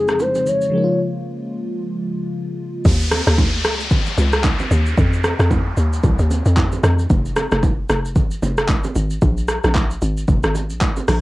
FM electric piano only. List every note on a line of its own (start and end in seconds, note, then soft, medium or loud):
0.00 0.41 C#3 medium
0.00 0.41 F3 medium
0.00 0.42 G#3 medium
0.00 0.43 C4 medium
0.00 0.44 D#4 medium
0.69 2.80 C#3 medium
0.69 2.80 F3 medium
0.69 2.81 G#3 medium
0.75 2.82 A#3 medium
0.75 0.82 D#4 medium
0.83 2.87 F4 medium